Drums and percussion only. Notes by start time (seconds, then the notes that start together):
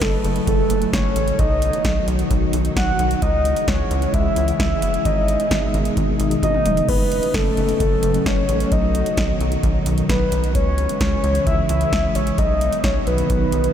0.01 kick, snare, closed hi-hat
0.25 closed hi-hat
0.36 closed hi-hat
0.47 kick, closed hi-hat
0.70 closed hi-hat
0.82 closed hi-hat
0.93 kick, snare, closed hi-hat
1.16 closed hi-hat
1.28 closed hi-hat
1.39 kick, closed hi-hat
1.62 closed hi-hat
1.73 closed hi-hat
1.85 kick, snare, closed hi-hat
2.08 closed hi-hat
2.19 closed hi-hat
2.31 kick, closed hi-hat
2.53 closed hi-hat
2.65 closed hi-hat
2.76 kick, snare, closed hi-hat
2.99 closed hi-hat
3.11 closed hi-hat
3.22 kick, closed hi-hat
3.45 closed hi-hat
3.56 closed hi-hat
3.68 kick, snare, closed hi-hat
3.91 closed hi-hat
4.02 closed hi-hat
4.14 kick, closed hi-hat
4.36 closed hi-hat
4.48 closed hi-hat
4.60 kick, snare, closed hi-hat
4.82 closed hi-hat
4.94 closed hi-hat
5.05 kick, closed hi-hat
5.28 closed hi-hat
5.40 closed hi-hat
5.51 kick, snare, closed hi-hat
5.74 closed hi-hat
5.85 closed hi-hat
5.97 kick, closed hi-hat
6.20 closed hi-hat
6.31 closed hi-hat
6.43 kick, closed hi-hat, high tom
6.54 mid tom
6.66 closed hi-hat, mid tom
6.77 closed hi-hat, floor tom
6.89 kick, crash
7.12 closed hi-hat
7.23 closed hi-hat
7.34 kick, snare, closed hi-hat
7.57 closed hi-hat
7.69 closed hi-hat
7.80 kick, closed hi-hat
8.03 closed hi-hat
8.14 closed hi-hat
8.26 kick, snare, closed hi-hat
8.49 closed hi-hat
8.60 closed hi-hat
8.72 kick, closed hi-hat
8.95 closed hi-hat
9.06 closed hi-hat
9.17 kick, snare, closed hi-hat
9.41 closed hi-hat
9.52 closed hi-hat
9.63 kick, closed hi-hat
9.86 closed hi-hat
9.98 closed hi-hat
10.09 kick, snare, closed hi-hat
10.32 closed hi-hat
10.44 closed hi-hat
10.55 kick, closed hi-hat
10.78 closed hi-hat
10.89 closed hi-hat
11.01 kick, snare, closed hi-hat
11.24 closed hi-hat
11.35 closed hi-hat
11.47 kick, closed hi-hat
11.69 closed hi-hat
11.81 closed hi-hat
11.92 kick, snare, closed hi-hat
12.15 closed hi-hat
12.27 closed hi-hat
12.38 kick, closed hi-hat
12.61 closed hi-hat
12.73 closed hi-hat
12.84 kick, snare, closed hi-hat
13.07 closed hi-hat
13.18 closed hi-hat
13.30 kick, closed hi-hat
13.52 closed hi-hat
13.64 closed hi-hat